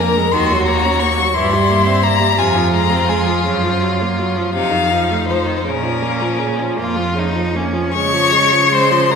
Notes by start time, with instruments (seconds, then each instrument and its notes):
Already playing: cello F2, violin A#4
0.00 viola A#3, violin A#5
0.16 viola G#3
0.32 cello D#2, viola D#3, violin F#4 C6
0.51 viola F#3
0.66 viola A#3, violin A#5
0.85 viola C#4
1.00 viola A#3, violin C#6
1.18 viola F#3
1.34 cello G2, viola E3, violin E4 C6
1.52 viola G3
1.70 viola A#3
1.86 viola C4
2.03 viola A#3, violin A#5
2.20 viola G3
2.38 cello F2, viola C3, violin F4 G#5
2.56 viola F3
2.72 viola G#3, violin A#5
2.90 viola C4
3.09 viola G#3, violin G#5
3.27 viola F3
3.45 cello F#2, viola C#3
3.63 viola F3
3.82 viola F#3
4.01 viola A#3
4.19 viola F#3
4.36 viola F3
4.54 cello F2, viola C3, violin D#4 F5
4.71 viola D#3
4.90 viola F3
5.10 viola A3
5.28 viola F3, violin C5
5.46 viola D#3
5.56 violin C5
5.64 cello A#2, viola C#3, violin A#4
5.69 violin C#4
5.83 viola F3
6.02 viola A#3
6.21 viola F3
6.39 viola C#3
6.58 viola F3
6.77 cello F2, viola A#3, violin F4
6.96 viola F3
7.14 viola C#3
7.19 violin D#4
7.35 viola F3
7.55 viola A#3, violin C#4
7.73 viola F3
7.93 cello C#3, viola G#3, violin C#5 C#6
8.13 viola F3
8.31 viola G#3
8.52 viola F3
8.71 viola G#3, violin C5 C6
8.91 viola F3
9.10 viola G#3, violin A#5